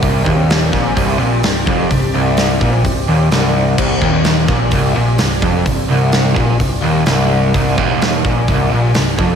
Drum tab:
CC |--------|--------|x-------|--------|
HH |o-o-o-o-|o-o-o-o-|--o-o-o-|o-o-o-o-|
SD |--oo--o-|--o---o-|--oo--o-|--o---o-|
BD |oo-oo--o|o--oo---|oo-oo--o|o--oo---|

CC |--------|
HH |o-o-o-o-|
SD |--o---o-|
BD |oo-oo--o|